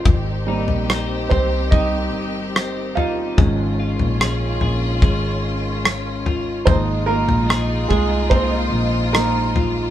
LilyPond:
<<
  \new Staff \with { instrumentName = "Clean electric guitar" } { \time 4/4 \key aes \major \tempo 4 = 73 r8 ees'8 <c' ees' c''>8 c''8 g4 c'8 ees'8 | aes,8 f'8 <des' f' aes'>8 aes'8 aes4 des'8 f'8 | aes,8 f'8 <ees' f' aes'>8 aes'8 bes4 ees'8 f'8 | }
  \new Staff \with { instrumentName = "String section" } { \time 4/4 \key aes \major << { <c' g'>1 | <des' f'>1 | <ees' f'>1 | } \\ { ees1~ | ees1 | aes1 | } >> }
  \new Staff \with { instrumentName = "Upright piano" } { \time 4/4 \key aes \major <c' c''>4. <c' c''>8 <ees' ees''>4. <f' f''>8~ | <f' f''>2~ <f' f''>8 r4. | <c' c''>8 <bes bes'>4 <aes aes'>8 <c' c''>4 <bes bes'>4 | }
  \new Staff \with { instrumentName = "Upright piano" } { \time 4/4 \key aes \major r8 <g bes c'>4. r2 | <f aes des'>8 r2. r8 | <f bes ees'>4. r2 r8 | }
  \new Staff \with { instrumentName = "Fingered electric bass" } { \clef bass \time 4/4 \key aes \major aes,,8. bes,,8. c,4 g,,4. | aes,,8. bes,,8. bes,,8 aes,,2 | aes,,8. bes,,8. c,4 bes,,4. | }
  \new DrumStaff \with { instrumentName = "Drums" } \drummode { \time 4/4 <bd tomfh>8. tomfh16 ss8 <bd tomfh>8 <bd tomfh>4 ss8 tomfh8 | <bd tomfh>8. tomfh16 ss8 tomfh8 <bd tomfh>4 ss8 tomfh8 | <bd tomfh>8. tomfh16 ss8 <bd tomfh>8 bd4 ss8 tomfh8 | }
>>